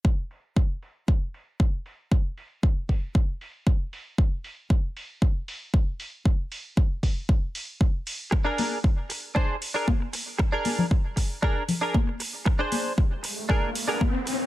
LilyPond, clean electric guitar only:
\new Staff \with { instrumentName = "Clean electric guitar" } { \time 4/4 \key bes \mixolydian \tempo 4 = 116 r1 | r1 | r1 | r1 |
r16 <d' aes' bes'>8. r4 <d' aes' c''>8 r16 <d' aes' bes'>16 r4 | r16 <d' aes' bes'>8. r4 <d' aes' bes'>8 r16 <d' aes' bes'>16 r4 | r16 <d' aes' c''>8. r4 <d' aes' bes'>8 r16 <d' aes' bes'>16 r4 | }